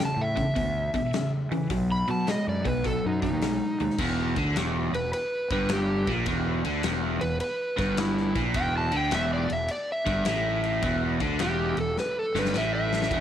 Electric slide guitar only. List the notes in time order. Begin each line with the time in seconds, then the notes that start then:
0.05 A5
0.21 E5
1.92 B5
2.11 A5
2.29 D#5
2.49 D5
2.67 B4
2.86 A4
3.06 D#4
3.22 D#4
4.95 B4
5.14 B4
5.52 B4
5.73 G4
7.21 B4
7.41 B4
7.79 B4
8.00 E4
8.56 G5
8.78 A5
8.96 G5
9.15 E5
9.34 D5
9.53 E5
9.71 D5
9.92 E5
11.42 G4
11.80 A4
12.00 B4
12.19 A4
12.39 B4
12.58 E5
12.75 E5